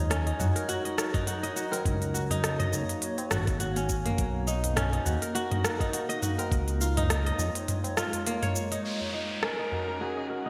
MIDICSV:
0, 0, Header, 1, 8, 480
1, 0, Start_track
1, 0, Tempo, 582524
1, 1529, Time_signature, 4, 2, 24, 8
1, 8650, End_track
2, 0, Start_track
2, 0, Title_t, "Kamancheh"
2, 0, Program_c, 0, 110
2, 7768, Note_on_c, 0, 70, 96
2, 8247, Note_on_c, 0, 68, 89
2, 8259, Note_off_c, 0, 70, 0
2, 8482, Note_on_c, 0, 66, 90
2, 8495, Note_off_c, 0, 68, 0
2, 8650, Note_off_c, 0, 66, 0
2, 8650, End_track
3, 0, Start_track
3, 0, Title_t, "Kora"
3, 0, Program_c, 1, 46
3, 0, Note_on_c, 1, 63, 75
3, 0, Note_on_c, 1, 65, 96
3, 83, Note_on_c, 1, 61, 77
3, 212, Note_off_c, 1, 63, 0
3, 216, Note_on_c, 1, 63, 67
3, 326, Note_on_c, 1, 66, 68
3, 375, Note_off_c, 1, 65, 0
3, 458, Note_on_c, 1, 70, 71
3, 562, Note_off_c, 1, 66, 0
3, 565, Note_on_c, 1, 66, 96
3, 699, Note_on_c, 1, 75, 67
3, 803, Note_off_c, 1, 70, 0
3, 806, Note_on_c, 1, 70, 72
3, 935, Note_off_c, 1, 63, 0
3, 938, Note_on_c, 1, 63, 94
3, 1043, Note_off_c, 1, 66, 0
3, 1047, Note_on_c, 1, 66, 81
3, 1176, Note_off_c, 1, 75, 0
3, 1179, Note_on_c, 1, 75, 100
3, 1283, Note_off_c, 1, 66, 0
3, 1286, Note_on_c, 1, 66, 75
3, 1412, Note_off_c, 1, 70, 0
3, 1415, Note_on_c, 1, 70, 70
3, 1516, Note_off_c, 1, 61, 0
3, 1762, Note_off_c, 1, 66, 0
3, 1765, Note_on_c, 1, 66, 76
3, 1897, Note_off_c, 1, 63, 0
3, 1900, Note_on_c, 1, 63, 93
3, 2061, Note_off_c, 1, 75, 0
3, 2137, Note_on_c, 1, 75, 93
3, 2464, Note_off_c, 1, 70, 0
3, 2725, Note_off_c, 1, 66, 0
3, 2728, Note_on_c, 1, 66, 76
3, 2964, Note_off_c, 1, 66, 0
3, 2967, Note_on_c, 1, 66, 84
3, 3019, Note_off_c, 1, 75, 0
3, 3101, Note_on_c, 1, 61, 77
3, 3237, Note_off_c, 1, 63, 0
3, 3342, Note_on_c, 1, 58, 68
3, 3686, Note_on_c, 1, 63, 80
3, 3921, Note_off_c, 1, 61, 0
3, 3925, Note_on_c, 1, 61, 84
3, 4057, Note_off_c, 1, 63, 0
3, 4060, Note_on_c, 1, 63, 68
3, 4165, Note_off_c, 1, 66, 0
3, 4168, Note_on_c, 1, 66, 72
3, 4301, Note_on_c, 1, 70, 72
3, 4403, Note_off_c, 1, 66, 0
3, 4407, Note_on_c, 1, 66, 102
3, 4541, Note_on_c, 1, 75, 71
3, 4646, Note_off_c, 1, 70, 0
3, 4650, Note_on_c, 1, 70, 69
3, 4779, Note_off_c, 1, 63, 0
3, 4782, Note_on_c, 1, 63, 99
3, 4886, Note_off_c, 1, 66, 0
3, 4889, Note_on_c, 1, 66, 78
3, 4931, Note_off_c, 1, 58, 0
3, 5015, Note_off_c, 1, 75, 0
3, 5018, Note_on_c, 1, 75, 98
3, 5125, Note_off_c, 1, 66, 0
3, 5128, Note_on_c, 1, 66, 72
3, 5257, Note_off_c, 1, 70, 0
3, 5260, Note_on_c, 1, 70, 74
3, 5357, Note_off_c, 1, 61, 0
3, 5610, Note_on_c, 1, 65, 74
3, 5660, Note_off_c, 1, 66, 0
3, 5741, Note_off_c, 1, 63, 0
3, 5745, Note_on_c, 1, 63, 99
3, 5900, Note_off_c, 1, 75, 0
3, 5984, Note_on_c, 1, 75, 91
3, 6309, Note_off_c, 1, 70, 0
3, 6567, Note_off_c, 1, 65, 0
3, 6571, Note_on_c, 1, 65, 75
3, 6812, Note_on_c, 1, 58, 81
3, 6866, Note_off_c, 1, 75, 0
3, 6943, Note_on_c, 1, 73, 107
3, 7081, Note_off_c, 1, 63, 0
3, 7182, Note_on_c, 1, 63, 70
3, 7524, Note_off_c, 1, 63, 0
3, 7527, Note_on_c, 1, 63, 66
3, 7768, Note_on_c, 1, 61, 70
3, 7818, Note_off_c, 1, 65, 0
3, 7888, Note_off_c, 1, 73, 0
3, 7897, Note_off_c, 1, 63, 0
3, 7900, Note_on_c, 1, 63, 61
3, 8008, Note_on_c, 1, 66, 63
3, 8140, Note_on_c, 1, 70, 58
3, 8244, Note_off_c, 1, 66, 0
3, 8247, Note_on_c, 1, 66, 90
3, 8381, Note_on_c, 1, 75, 62
3, 8402, Note_off_c, 1, 58, 0
3, 8483, Note_off_c, 1, 70, 0
3, 8487, Note_on_c, 1, 70, 66
3, 8614, Note_off_c, 1, 63, 0
3, 8617, Note_on_c, 1, 63, 85
3, 8650, Note_off_c, 1, 61, 0
3, 8650, Note_off_c, 1, 63, 0
3, 8650, Note_off_c, 1, 66, 0
3, 8650, Note_off_c, 1, 70, 0
3, 8650, Note_off_c, 1, 75, 0
3, 8650, End_track
4, 0, Start_track
4, 0, Title_t, "Ambient pad"
4, 0, Program_c, 2, 92
4, 0, Note_on_c, 2, 54, 83
4, 0, Note_on_c, 2, 63, 79
4, 0, Note_on_c, 2, 73, 92
4, 1493, Note_off_c, 2, 73, 0
4, 1508, Note_off_c, 2, 54, 0
4, 1508, Note_off_c, 2, 63, 0
4, 1528, Note_on_c, 2, 58, 86
4, 1529, Note_on_c, 2, 66, 81
4, 1529, Note_on_c, 2, 73, 88
4, 3429, Note_off_c, 2, 58, 0
4, 3429, Note_off_c, 2, 73, 0
4, 3430, Note_off_c, 2, 66, 0
4, 3442, Note_on_c, 2, 58, 87
4, 3443, Note_on_c, 2, 63, 77
4, 5346, Note_off_c, 2, 58, 0
4, 5346, Note_off_c, 2, 63, 0
4, 5364, Note_on_c, 2, 73, 93
4, 5365, Note_on_c, 2, 56, 86
4, 5365, Note_on_c, 2, 65, 83
4, 7267, Note_off_c, 2, 73, 0
4, 7268, Note_off_c, 2, 56, 0
4, 7268, Note_off_c, 2, 65, 0
4, 7283, Note_on_c, 2, 61, 77
4, 7285, Note_on_c, 2, 66, 75
4, 7285, Note_on_c, 2, 75, 87
4, 8650, Note_off_c, 2, 61, 0
4, 8650, Note_off_c, 2, 66, 0
4, 8650, Note_off_c, 2, 75, 0
4, 8650, End_track
5, 0, Start_track
5, 0, Title_t, "Analog synth bass"
5, 0, Program_c, 3, 38
5, 0, Note_on_c, 3, 39, 100
5, 273, Note_off_c, 3, 39, 0
5, 331, Note_on_c, 3, 42, 75
5, 420, Note_off_c, 3, 42, 0
5, 1530, Note_on_c, 3, 37, 106
5, 2194, Note_off_c, 3, 37, 0
5, 2252, Note_on_c, 3, 37, 77
5, 2340, Note_off_c, 3, 37, 0
5, 2733, Note_on_c, 3, 32, 98
5, 3395, Note_off_c, 3, 32, 0
5, 3451, Note_on_c, 3, 35, 99
5, 4114, Note_off_c, 3, 35, 0
5, 4169, Note_on_c, 3, 39, 78
5, 4259, Note_off_c, 3, 39, 0
5, 5369, Note_on_c, 3, 37, 101
5, 6033, Note_off_c, 3, 37, 0
5, 6087, Note_on_c, 3, 41, 77
5, 6178, Note_off_c, 3, 41, 0
5, 8650, End_track
6, 0, Start_track
6, 0, Title_t, "Downlifter"
6, 0, Program_c, 4, 103
6, 7289, Note_on_c, 4, 60, 58
6, 8650, Note_off_c, 4, 60, 0
6, 8650, End_track
7, 0, Start_track
7, 0, Title_t, "Tabla"
7, 218, Note_on_c, 9, 63, 45
7, 300, Note_off_c, 9, 63, 0
7, 325, Note_on_c, 9, 60, 28
7, 328, Note_on_c, 9, 64, 91
7, 407, Note_off_c, 9, 60, 0
7, 411, Note_off_c, 9, 64, 0
7, 468, Note_on_c, 9, 63, 43
7, 550, Note_off_c, 9, 63, 0
7, 937, Note_on_c, 9, 63, 45
7, 1019, Note_off_c, 9, 63, 0
7, 1413, Note_on_c, 9, 60, 72
7, 1425, Note_on_c, 9, 63, 46
7, 1495, Note_off_c, 9, 60, 0
7, 1508, Note_off_c, 9, 63, 0
7, 1896, Note_on_c, 9, 64, 81
7, 1898, Note_on_c, 9, 63, 58
7, 1978, Note_off_c, 9, 64, 0
7, 1980, Note_off_c, 9, 63, 0
7, 2142, Note_on_c, 9, 63, 44
7, 2224, Note_off_c, 9, 63, 0
7, 2244, Note_on_c, 9, 60, 32
7, 2246, Note_on_c, 9, 64, 90
7, 2326, Note_off_c, 9, 60, 0
7, 2328, Note_off_c, 9, 64, 0
7, 2384, Note_on_c, 9, 63, 47
7, 2467, Note_off_c, 9, 63, 0
7, 2620, Note_on_c, 9, 60, 73
7, 2703, Note_off_c, 9, 60, 0
7, 3825, Note_on_c, 9, 63, 58
7, 3829, Note_on_c, 9, 64, 70
7, 3907, Note_off_c, 9, 63, 0
7, 3911, Note_off_c, 9, 64, 0
7, 4061, Note_on_c, 9, 63, 51
7, 4143, Note_off_c, 9, 63, 0
7, 4163, Note_on_c, 9, 64, 87
7, 4167, Note_on_c, 9, 60, 36
7, 4245, Note_off_c, 9, 64, 0
7, 4249, Note_off_c, 9, 60, 0
7, 4297, Note_on_c, 9, 63, 51
7, 4379, Note_off_c, 9, 63, 0
7, 4778, Note_on_c, 9, 63, 52
7, 4860, Note_off_c, 9, 63, 0
7, 5265, Note_on_c, 9, 60, 74
7, 5269, Note_on_c, 9, 63, 50
7, 5348, Note_off_c, 9, 60, 0
7, 5351, Note_off_c, 9, 63, 0
7, 5738, Note_on_c, 9, 64, 77
7, 5742, Note_on_c, 9, 63, 73
7, 5820, Note_off_c, 9, 64, 0
7, 5825, Note_off_c, 9, 63, 0
7, 5983, Note_on_c, 9, 63, 53
7, 6066, Note_off_c, 9, 63, 0
7, 6087, Note_on_c, 9, 64, 83
7, 6090, Note_on_c, 9, 60, 37
7, 6170, Note_off_c, 9, 64, 0
7, 6172, Note_off_c, 9, 60, 0
7, 6219, Note_on_c, 9, 60, 57
7, 6219, Note_on_c, 9, 63, 49
7, 6301, Note_off_c, 9, 60, 0
7, 6301, Note_off_c, 9, 63, 0
7, 6459, Note_on_c, 9, 60, 73
7, 6541, Note_off_c, 9, 60, 0
7, 6696, Note_on_c, 9, 64, 71
7, 6778, Note_off_c, 9, 64, 0
7, 7422, Note_on_c, 9, 64, 63
7, 7505, Note_off_c, 9, 64, 0
7, 7663, Note_on_c, 9, 63, 58
7, 7746, Note_off_c, 9, 63, 0
7, 7904, Note_on_c, 9, 63, 43
7, 7987, Note_off_c, 9, 63, 0
7, 8008, Note_on_c, 9, 64, 73
7, 8091, Note_off_c, 9, 64, 0
7, 8144, Note_on_c, 9, 63, 39
7, 8227, Note_off_c, 9, 63, 0
7, 8616, Note_on_c, 9, 63, 48
7, 8650, Note_off_c, 9, 63, 0
7, 8650, End_track
8, 0, Start_track
8, 0, Title_t, "Drums"
8, 89, Note_on_c, 9, 37, 69
8, 89, Note_on_c, 9, 46, 53
8, 92, Note_on_c, 9, 69, 40
8, 171, Note_off_c, 9, 37, 0
8, 171, Note_off_c, 9, 46, 0
8, 174, Note_off_c, 9, 69, 0
8, 221, Note_on_c, 9, 46, 28
8, 303, Note_off_c, 9, 46, 0
8, 327, Note_on_c, 9, 45, 76
8, 330, Note_on_c, 9, 69, 73
8, 410, Note_off_c, 9, 45, 0
8, 413, Note_off_c, 9, 69, 0
8, 461, Note_on_c, 9, 46, 41
8, 464, Note_on_c, 9, 69, 30
8, 543, Note_off_c, 9, 46, 0
8, 546, Note_off_c, 9, 69, 0
8, 568, Note_on_c, 9, 46, 46
8, 571, Note_on_c, 9, 69, 39
8, 650, Note_off_c, 9, 46, 0
8, 653, Note_off_c, 9, 69, 0
8, 703, Note_on_c, 9, 46, 28
8, 785, Note_off_c, 9, 46, 0
8, 809, Note_on_c, 9, 37, 70
8, 812, Note_on_c, 9, 69, 79
8, 892, Note_off_c, 9, 37, 0
8, 895, Note_off_c, 9, 69, 0
8, 941, Note_on_c, 9, 36, 101
8, 942, Note_on_c, 9, 45, 79
8, 942, Note_on_c, 9, 46, 42
8, 945, Note_on_c, 9, 69, 33
8, 1023, Note_off_c, 9, 36, 0
8, 1024, Note_off_c, 9, 45, 0
8, 1024, Note_off_c, 9, 46, 0
8, 1027, Note_off_c, 9, 69, 0
8, 1048, Note_on_c, 9, 46, 52
8, 1051, Note_on_c, 9, 69, 44
8, 1131, Note_off_c, 9, 46, 0
8, 1134, Note_off_c, 9, 69, 0
8, 1182, Note_on_c, 9, 46, 29
8, 1185, Note_on_c, 9, 69, 28
8, 1265, Note_off_c, 9, 46, 0
8, 1268, Note_off_c, 9, 69, 0
8, 1291, Note_on_c, 9, 69, 71
8, 1374, Note_off_c, 9, 69, 0
8, 1426, Note_on_c, 9, 46, 40
8, 1429, Note_on_c, 9, 69, 29
8, 1508, Note_off_c, 9, 46, 0
8, 1511, Note_off_c, 9, 69, 0
8, 1528, Note_on_c, 9, 36, 110
8, 1530, Note_on_c, 9, 45, 84
8, 1530, Note_on_c, 9, 46, 55
8, 1533, Note_on_c, 9, 69, 43
8, 1610, Note_off_c, 9, 36, 0
8, 1612, Note_off_c, 9, 45, 0
8, 1612, Note_off_c, 9, 46, 0
8, 1615, Note_off_c, 9, 69, 0
8, 1662, Note_on_c, 9, 46, 29
8, 1665, Note_on_c, 9, 69, 28
8, 1745, Note_off_c, 9, 46, 0
8, 1748, Note_off_c, 9, 69, 0
8, 1772, Note_on_c, 9, 69, 70
8, 1854, Note_off_c, 9, 69, 0
8, 1903, Note_on_c, 9, 46, 41
8, 1906, Note_on_c, 9, 69, 30
8, 1985, Note_off_c, 9, 46, 0
8, 1988, Note_off_c, 9, 69, 0
8, 2008, Note_on_c, 9, 37, 70
8, 2008, Note_on_c, 9, 46, 52
8, 2011, Note_on_c, 9, 69, 43
8, 2091, Note_off_c, 9, 37, 0
8, 2091, Note_off_c, 9, 46, 0
8, 2094, Note_off_c, 9, 69, 0
8, 2141, Note_on_c, 9, 45, 77
8, 2141, Note_on_c, 9, 46, 30
8, 2144, Note_on_c, 9, 69, 28
8, 2223, Note_off_c, 9, 45, 0
8, 2223, Note_off_c, 9, 46, 0
8, 2226, Note_off_c, 9, 69, 0
8, 2250, Note_on_c, 9, 69, 76
8, 2332, Note_off_c, 9, 69, 0
8, 2384, Note_on_c, 9, 46, 42
8, 2387, Note_on_c, 9, 69, 29
8, 2467, Note_off_c, 9, 46, 0
8, 2470, Note_off_c, 9, 69, 0
8, 2488, Note_on_c, 9, 46, 51
8, 2491, Note_on_c, 9, 69, 40
8, 2570, Note_off_c, 9, 46, 0
8, 2573, Note_off_c, 9, 69, 0
8, 2621, Note_on_c, 9, 46, 29
8, 2624, Note_on_c, 9, 69, 28
8, 2703, Note_off_c, 9, 46, 0
8, 2706, Note_off_c, 9, 69, 0
8, 2726, Note_on_c, 9, 37, 72
8, 2726, Note_on_c, 9, 45, 79
8, 2729, Note_on_c, 9, 69, 75
8, 2809, Note_off_c, 9, 37, 0
8, 2809, Note_off_c, 9, 45, 0
8, 2811, Note_off_c, 9, 69, 0
8, 2862, Note_on_c, 9, 46, 43
8, 2863, Note_on_c, 9, 36, 98
8, 2865, Note_on_c, 9, 69, 31
8, 2945, Note_off_c, 9, 36, 0
8, 2945, Note_off_c, 9, 46, 0
8, 2947, Note_off_c, 9, 69, 0
8, 2967, Note_on_c, 9, 46, 55
8, 2969, Note_on_c, 9, 69, 44
8, 3049, Note_off_c, 9, 46, 0
8, 3052, Note_off_c, 9, 69, 0
8, 3101, Note_on_c, 9, 46, 30
8, 3104, Note_on_c, 9, 69, 29
8, 3183, Note_off_c, 9, 46, 0
8, 3186, Note_off_c, 9, 69, 0
8, 3208, Note_on_c, 9, 69, 72
8, 3209, Note_on_c, 9, 36, 57
8, 3291, Note_off_c, 9, 69, 0
8, 3292, Note_off_c, 9, 36, 0
8, 3342, Note_on_c, 9, 45, 78
8, 3342, Note_on_c, 9, 46, 42
8, 3345, Note_on_c, 9, 69, 28
8, 3425, Note_off_c, 9, 45, 0
8, 3425, Note_off_c, 9, 46, 0
8, 3428, Note_off_c, 9, 69, 0
8, 3447, Note_on_c, 9, 46, 56
8, 3449, Note_on_c, 9, 36, 116
8, 3450, Note_on_c, 9, 69, 41
8, 3529, Note_off_c, 9, 46, 0
8, 3532, Note_off_c, 9, 36, 0
8, 3532, Note_off_c, 9, 69, 0
8, 3688, Note_on_c, 9, 69, 69
8, 3771, Note_off_c, 9, 69, 0
8, 3822, Note_on_c, 9, 46, 45
8, 3825, Note_on_c, 9, 69, 31
8, 3904, Note_off_c, 9, 46, 0
8, 3907, Note_off_c, 9, 69, 0
8, 3929, Note_on_c, 9, 37, 70
8, 3929, Note_on_c, 9, 45, 85
8, 3929, Note_on_c, 9, 46, 54
8, 3931, Note_on_c, 9, 69, 44
8, 4011, Note_off_c, 9, 37, 0
8, 4011, Note_off_c, 9, 45, 0
8, 4011, Note_off_c, 9, 46, 0
8, 4014, Note_off_c, 9, 69, 0
8, 4063, Note_on_c, 9, 46, 30
8, 4146, Note_off_c, 9, 46, 0
8, 4172, Note_on_c, 9, 69, 74
8, 4254, Note_off_c, 9, 69, 0
8, 4302, Note_on_c, 9, 46, 43
8, 4305, Note_on_c, 9, 69, 30
8, 4385, Note_off_c, 9, 46, 0
8, 4388, Note_off_c, 9, 69, 0
8, 4411, Note_on_c, 9, 46, 53
8, 4414, Note_on_c, 9, 69, 39
8, 4494, Note_off_c, 9, 46, 0
8, 4497, Note_off_c, 9, 69, 0
8, 4545, Note_on_c, 9, 45, 84
8, 4545, Note_on_c, 9, 46, 29
8, 4627, Note_off_c, 9, 45, 0
8, 4627, Note_off_c, 9, 46, 0
8, 4651, Note_on_c, 9, 37, 79
8, 4654, Note_on_c, 9, 69, 75
8, 4734, Note_off_c, 9, 37, 0
8, 4737, Note_off_c, 9, 69, 0
8, 4782, Note_on_c, 9, 36, 99
8, 4786, Note_on_c, 9, 46, 48
8, 4789, Note_on_c, 9, 69, 30
8, 4865, Note_off_c, 9, 36, 0
8, 4869, Note_off_c, 9, 46, 0
8, 4871, Note_off_c, 9, 69, 0
8, 4890, Note_on_c, 9, 46, 61
8, 4893, Note_on_c, 9, 69, 43
8, 4972, Note_off_c, 9, 46, 0
8, 4975, Note_off_c, 9, 69, 0
8, 5024, Note_on_c, 9, 46, 31
8, 5027, Note_on_c, 9, 69, 28
8, 5107, Note_off_c, 9, 46, 0
8, 5110, Note_off_c, 9, 69, 0
8, 5129, Note_on_c, 9, 45, 74
8, 5132, Note_on_c, 9, 69, 68
8, 5211, Note_off_c, 9, 45, 0
8, 5214, Note_off_c, 9, 69, 0
8, 5265, Note_on_c, 9, 46, 42
8, 5268, Note_on_c, 9, 69, 30
8, 5348, Note_off_c, 9, 46, 0
8, 5350, Note_off_c, 9, 69, 0
8, 5369, Note_on_c, 9, 36, 113
8, 5371, Note_on_c, 9, 46, 60
8, 5374, Note_on_c, 9, 69, 42
8, 5451, Note_off_c, 9, 36, 0
8, 5454, Note_off_c, 9, 46, 0
8, 5457, Note_off_c, 9, 69, 0
8, 5502, Note_on_c, 9, 46, 30
8, 5505, Note_on_c, 9, 69, 26
8, 5584, Note_off_c, 9, 46, 0
8, 5587, Note_off_c, 9, 69, 0
8, 5613, Note_on_c, 9, 69, 73
8, 5696, Note_off_c, 9, 69, 0
8, 5746, Note_on_c, 9, 45, 75
8, 5746, Note_on_c, 9, 46, 46
8, 5749, Note_on_c, 9, 69, 30
8, 5828, Note_off_c, 9, 45, 0
8, 5828, Note_off_c, 9, 46, 0
8, 5831, Note_off_c, 9, 69, 0
8, 5851, Note_on_c, 9, 37, 75
8, 5851, Note_on_c, 9, 46, 58
8, 5854, Note_on_c, 9, 69, 42
8, 5934, Note_off_c, 9, 37, 0
8, 5934, Note_off_c, 9, 46, 0
8, 5937, Note_off_c, 9, 69, 0
8, 5986, Note_on_c, 9, 46, 29
8, 6069, Note_off_c, 9, 46, 0
8, 6092, Note_on_c, 9, 69, 73
8, 6174, Note_off_c, 9, 69, 0
8, 6224, Note_on_c, 9, 46, 47
8, 6227, Note_on_c, 9, 69, 32
8, 6306, Note_off_c, 9, 46, 0
8, 6309, Note_off_c, 9, 69, 0
8, 6331, Note_on_c, 9, 45, 76
8, 6331, Note_on_c, 9, 46, 57
8, 6334, Note_on_c, 9, 69, 41
8, 6414, Note_off_c, 9, 45, 0
8, 6414, Note_off_c, 9, 46, 0
8, 6417, Note_off_c, 9, 69, 0
8, 6463, Note_on_c, 9, 46, 31
8, 6466, Note_on_c, 9, 69, 30
8, 6546, Note_off_c, 9, 46, 0
8, 6549, Note_off_c, 9, 69, 0
8, 6569, Note_on_c, 9, 37, 78
8, 6572, Note_on_c, 9, 69, 75
8, 6651, Note_off_c, 9, 37, 0
8, 6654, Note_off_c, 9, 69, 0
8, 6701, Note_on_c, 9, 46, 45
8, 6704, Note_on_c, 9, 69, 30
8, 6783, Note_off_c, 9, 46, 0
8, 6786, Note_off_c, 9, 69, 0
8, 6811, Note_on_c, 9, 46, 57
8, 6813, Note_on_c, 9, 69, 45
8, 6893, Note_off_c, 9, 46, 0
8, 6896, Note_off_c, 9, 69, 0
8, 6943, Note_on_c, 9, 45, 82
8, 6943, Note_on_c, 9, 46, 30
8, 6945, Note_on_c, 9, 69, 29
8, 7025, Note_off_c, 9, 45, 0
8, 7025, Note_off_c, 9, 46, 0
8, 7028, Note_off_c, 9, 69, 0
8, 7051, Note_on_c, 9, 69, 74
8, 7133, Note_off_c, 9, 69, 0
8, 7183, Note_on_c, 9, 46, 45
8, 7186, Note_on_c, 9, 69, 30
8, 7265, Note_off_c, 9, 46, 0
8, 7268, Note_off_c, 9, 69, 0
8, 7768, Note_on_c, 9, 37, 91
8, 7850, Note_off_c, 9, 37, 0
8, 8650, End_track
0, 0, End_of_file